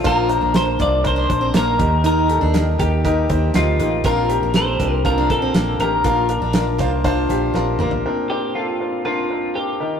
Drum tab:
HH |x-x-x-x-x-x-x-x-|x-x-x-x-x-x-x-x-|x-x-x-x-x-x-x-x-|x-x-x-x-x-x-----|
SD |----o-------o---|----o-------o---|----o-------o---|----o-------o---|
T2 |----------------|----------------|----------------|--------------o-|
FT |----------------|----------------|----------------|---------------o|
BD |o-----o-o-o---o-|------o-o-o-----|o-----o-o-o-----|o-----o-o-------|

HH |----------------|
SD |----------------|
T2 |----------------|
FT |----------------|
BD |----------------|